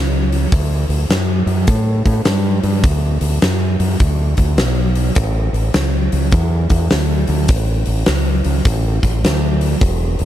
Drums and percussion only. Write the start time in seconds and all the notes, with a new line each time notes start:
0.32 open hi-hat
0.52 kick, open hi-hat
0.90 open hi-hat
1.10 snare, open hi-hat
1.47 open hi-hat
1.67 kick, open hi-hat
2.06 kick, open hi-hat
2.25 snare, open hi-hat
2.63 open hi-hat
2.83 kick, open hi-hat
3.21 open hi-hat
3.42 snare, open hi-hat
3.80 open hi-hat
4.00 kick, open hi-hat
4.37 kick, open hi-hat
4.58 snare, open hi-hat
4.95 open hi-hat
5.15 kick, open hi-hat
5.54 open hi-hat
5.74 snare, open hi-hat
6.12 open hi-hat
6.32 kick, open hi-hat
6.70 kick, open hi-hat
6.90 snare, open hi-hat
7.27 open hi-hat
7.48 kick, open hi-hat
7.86 open hi-hat
8.06 snare, open hi-hat
8.44 open hi-hat
8.65 kick, open hi-hat
9.03 kick, open hi-hat
9.24 snare, open hi-hat
9.61 open hi-hat
9.81 kick, open hi-hat
10.19 open hi-hat